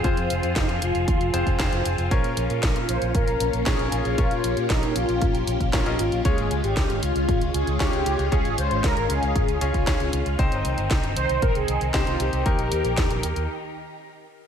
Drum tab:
HH |xxxxxxxxxxxxxxxx|xxxxxxxxxxxxxxxx|xxxxxxxxxxxxxxxx|xxxxxxxxxxxxxxxx|
SD |----o-------o---|----o-------o---|----o-------o---|----o-------o---|
BD |o---o---o--oo---|o---o---o---o---|o---o---o--oo---|o---o---o---o---|

HH |xxxxxxxxxxxxxxxx|xxxxxxxxxxxxxxxx|xxxxxxxx--------|
SD |----o-------o---|----o-------o---|----o-----------|
BD |o---o---o--oo---|o---o---o---o---|o---o-----------|